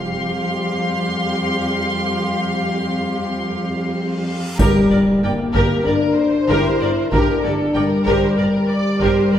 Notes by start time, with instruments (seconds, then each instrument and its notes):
Already playing: double bass section F1, cello section F2, french horn section G3 C4, viola section G4, violin section F5 C6
2.06 reverse cymbal
4.59 double bass section G1, cello section G2, french horn section G3, viola section G4 A#4, violin section A#4, taiko, impact, triangle
4.91 double bass section G1, cello section G2, viola section A#4, violin section D5
5.23 double bass section G1, cello section G2, french horn section A#3, viola section A#4 D5, violin section G5
5.54 double bass section G1, cello section G2, viola section G4 A#4, violin section A#4, taiko
5.84 double bass section G1, cello section G2, french horn section D4, violin section A#4 D5, viola section A#4
6.17 violin section C5
6.48 double bass section G1, cello section G2, french horn section E4, viola section G4 A#4, violin section A#4, taiko
6.81 double bass section G1, cello section G2, viola section A#4, violin section D5
7.12 double bass section G1, cello section G2, french horn section D4, viola section G4 A#4, violin section A#4, taiko
7.43 double bass section G1, cello section G2, viola section A#3 G4, violin section A4 D5
7.74 double bass section G1, cello section G2, french horn section G3, violin section A#4 G5, viola section A#4 D5
8.06 double bass section G1, cello section G2, viola section G4 A#4, violin section A#4 C5, taiko
8.38 double bass section G1, cello section G2, violin section A#4 D5, viola section A#4
8.69 violin section D5
9.01 double bass section G1, cello section G2, viola section G4 A#4, violin section A#4 C5, taiko
9.32 double bass section G1, cello section G2, viola section A#4, violin section A#4 D5